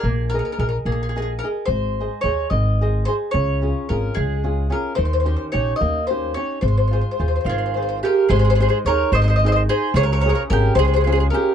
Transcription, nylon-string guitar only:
X:1
M:6/8
L:1/8
Q:3/8=73
K:Ab
V:1 name="Nylon-string guitar"
B, [ABe] [ABe] B, [ABe] [ABe] | A, [Ace] [Ace] E, [Ace] [Ace] | D, [DFA] [DFA] A, [DFA] [DFA] | E, [DEG] [DEG] B, [DEG] [DEG] |
A, [FAc] [FAc] E, [FAc] [FAc] | A, [EAc] [EAc] E, [EAc] [EAc] | D, [DFA] [DFA] A, [DFA] [DFA] |]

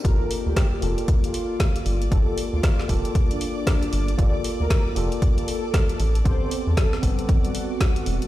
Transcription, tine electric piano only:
X:1
M:4/4
L:1/8
Q:"Swing 16ths" 1/4=116
K:Gm
V:1 name="Tine electric piano"
[B,FGA]3 [B,FGA]4- [B,FGA] | [B,FGA]3 [B,FGA]4- [B,FGA] | [B,FGA]3 [B,FGA]4 z | [=B,CGA]3 [G,B,CA]4- [G,B,CA] |]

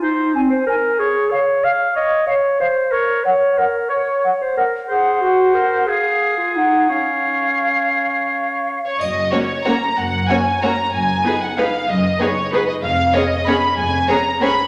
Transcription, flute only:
X:1
M:3/4
L:1/8
Q:1/4=184
K:Db
V:1 name="Flute"
z2 a2 a2 | z2 f2 f2 | z2 f2 f2 | z2 g2 g2 |
z2 g2 g2 | g2 g4 | f4 g2 | f6- |
f4- f z | [K:F#] z6 | z6 | z6 |
z6 | z6 | z6 |]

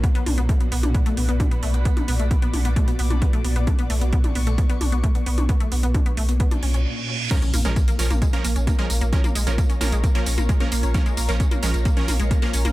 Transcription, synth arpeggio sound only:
X:1
M:4/4
L:1/16
Q:1/4=132
K:Bbphr
V:1 name="Synth arpeggio sound"
=B, B, =D B, =A, B, B, D B, A, B, B, D B, A, B, | =B, =D B, =A, B, B, D B, A, B, B, D B, A, B, B, | =D =B, =A, B, B, D B, A, B, B, D B, A, B, B, D | =B, =A, B, B, =D B, A, B, B, D _D D z4 |
B, D B, A, B, B, D B, A, B, B, D B, A, B, B, | D B, A, B, B, D B, A, B, B, D B, A, B, B, D | B, A, B, B, D B, A, B, B, D B, A, B, B, D B, |]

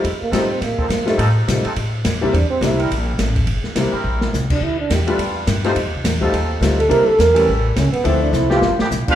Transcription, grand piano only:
X:1
M:4/4
L:1/8
Q:"Swing" 1/4=210
K:Cmix
V:1 name="Grand piano"
z2 [G,A,C_EF] z4 [G,A,CEF] | z2 [G,A,C_EF] z4 [G,B,CD=E] | z2 [G,B,CDE] z4 z | z2 [G,B,CDE] z4 z |
z3 [G,A,=B,DF] z3 [G,A,C_EF] | z3 [G,A,C_EF] z2 [G,A,CEF] z | [G,B,CDE] z2 [E,G,A,_DE] z4 | [F,A,CDE]3 [G,A,=B,DG] z4 |]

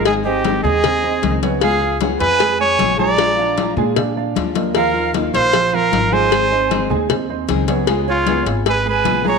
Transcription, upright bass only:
X:1
M:4/4
L:1/8
Q:1/4=153
K:Ablyd
V:1 name="Upright bass" clef=bass
A,,,3 E,,3 _D,,2- | _D,,3 F,,3 B,,,2- | B,,,3 B,,3 E,,2- | E,,3 B,,,3 A,,,2- |
A,,,3 E,,3 _D,,2- | _D,,3 A,,,3 B,,,2 |]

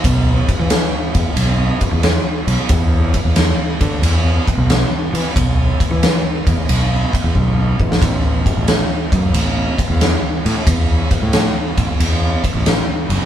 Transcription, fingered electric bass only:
X:1
M:4/4
L:1/16
Q:"Swing" 1/4=90
K:Ador
V:1 name="Fingered electric bass" clef=bass
B,,,2 z E,2 z E,, z B,,,2 z E,,2 z B,,, z | E,,3 E,,2 z D,2 E,,2 z B,,,2 z E, z | B,,,2 z E,2 z E,, z B,,,2 z E,, B,,,2 A,,,2 | A,,,3 A,,,2 z F,,2 A,,,2 z E,,2 z A,, z |
E,,2 z A,,2 z A,,, z E,,2 z A,,,2 z F,,, z |]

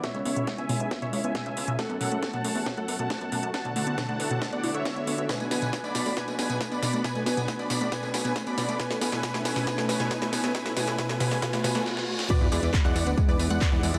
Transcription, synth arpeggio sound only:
X:1
M:4/4
L:1/16
Q:1/4=137
K:Bdor
V:1 name="Synth arpeggio sound"
B,, G, B, B,, G, B, B,, G, B, B,, G, B, B,, G, B, B,, | A, B, B,, A, B, B,, A, B, B,, A, B, B,, A, B, B,, A, | B, B,, A, B, B,, A, B, B,, A, B, E A, B, B, B, B | B,, A, B, B,, A, B, B,, A, B,, A, B, B,, A, B, B,, A, |
B,, A, B, B,, A, B, B,, A, B,, A, B, B,, A, B, B,, A, | B,, A, B, B,, B,, A, B, B,, B,, A, B, B,, B,, A, B, B,, | B,, A, B,, A, B,, A, B,, A, B,, A, B,, A, z4 | B, B G, B, B G, B, B G, B, B G, B, B G, B, |]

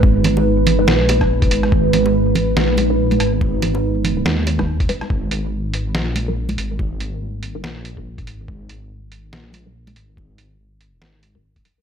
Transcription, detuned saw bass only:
X:1
M:4/4
L:1/8
Q:"Swing 16ths" 1/4=142
K:G#m
V:1 name="Detuned saw bass" clef=bass
G,,,2 G,,,2 A,,,3 G,,, | G,,,4 A,,,3 G,,,- | G,,,2 G,,,2 D,,3 z | G,,,4 A,,,3 G,,,- |
G,,,2 G,,,2 A,,,3 G,,, | G,,,4 A,,,3 G,,,- | G,,,2 G,,,2 G,,,3 z |]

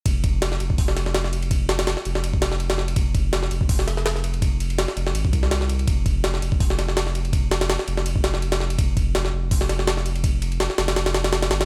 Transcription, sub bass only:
X:1
M:4/4
L:1/8
Q:"Swing 16ths" 1/4=165
K:Cm
V:1 name="Sub bass" clef=bass
F,,,3 F,,,4- F,,,- | F,,,2 z F,,,4- F,,, | F,,,3 F,,,4- F,,,- | F,,,2 z F,,, A,,, C,,3 |
F,,,3 F,,,4- F,,,- | F,,,2 z F,,,4- F,,, | F,,,3 F,,,4- F,,,- | F,,,2 z F,,,4 G,,, |]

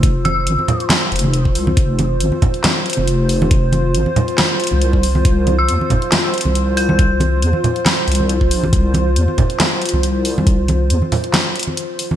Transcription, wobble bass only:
X:1
M:4/4
L:1/16
Q:"Swing 16ths" 1/4=138
K:Cphr
V:1 name="Wobble bass" clef=bass
F,,,4 A,,, z4 z F,,,4 C,,2 | F,,,4 A,,, z6 F,,,4- F,,,- | F,,,4 A,,, z6 C,,4- C,, | C,,4 =E,, z6 C,,4- C,,- |
C,,4 =E,, z4 z C,,4 B,,,2 | C,,4 =E,, z6 C,,4- C,,- | C,,4 =E,, z8 z3 |]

